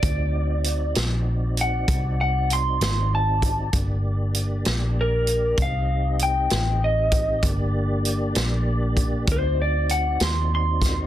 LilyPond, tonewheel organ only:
\new Staff \with { instrumentName = "Tonewheel organ" } { \time 12/8 \key g \minor \tempo 4. = 65 <c' ees' fis' d''>1. | <bes d' g' d''>2. r2. | <bes d' g' d''>2. <c' ees' fis' d''>2. | }